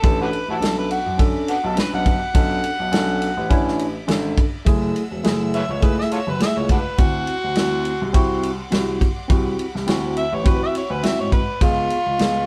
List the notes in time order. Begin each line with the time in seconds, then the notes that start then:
Already playing: E5 B5 D6
0.00 A1 C#4 D4 A4, kick, ride
0.05 A4
0.22 D4 F#4 B4
0.33 ride
0.48 A1 E4 F#4 A4
0.61 B1 C#4 D4 A4, snare, ride
0.78 B4
0.91 F#4, ride
1.06 F#2
1.18 C#4 D4 A4, kick, ride
1.48 B3 D4 F#4, ride
1.64 B1 A4
1.75 C#4 D4 B4, snare, ride
1.93 B1 F#5
2.06 F#5, kick, ride
2.34 B1 C#4 D4 A4, kick, ride
2.64 ride
2.80 B1
2.92 B1 C#4 D4 A4, snare, ride
3.22 ride
3.37 A1
3.49 C#4 D4 E4, kick, ride
3.68 snare
3.79 ride
4.07 G#1 C#4 D4 A4, snare, ride
4.38 kick, ride
4.65 F#1 A3 E4 G#4 E5 F#5 E6, kick, ride
4.96 ride
5.11 E1
5.23 F#1 A3 E4 G#4, snare, ride
5.54 B4 C#5 E5, ride
5.69 C#2 C#5
5.81 A3 E4 G#4 B4, kick, ride
5.99 E5, snare
6.11 F4 A4 C#5, ride
6.27 F#1 B4
6.40 A3 E4 G#4 E5, snare, ride
6.56 C#2 C#5
6.69 D4 F#4 B4, kick, ride
6.98 D2 C4 E4 F#4 C6 D6, kick, ride
7.27 ride
7.44 D2
7.55 D2 C4 E4 F#4, snare, ride
7.85 ride
8.01 C2
8.13 C4 E4 F#4, kick, ride
8.43 ride
8.71 C2 C4 E4 F#4, snare, ride
9.01 kick, ride
9.28 C2 C4 E4 F#4 B5, kick, ride
9.59 ride
9.75 C2, snare
9.87 D2 C4 E4 F#4, snare, ride
10.17 E5, ride
10.32 A1 C#5
10.44 C4 E4 F#4 B4, kick, ride
10.63 E5
10.75 C#5, ride
10.90 D2 B4
11.03 C4 E4 F#4 E5, snare, ride
11.19 G#2 C#5
11.32 B4, kick, ride
11.61 C#2 B3 F4 G#4 F5 B5 C#6, kick, ride
11.90 ride
12.06 C#2
12.19 C#2 B3 F4 G#4, snare, ride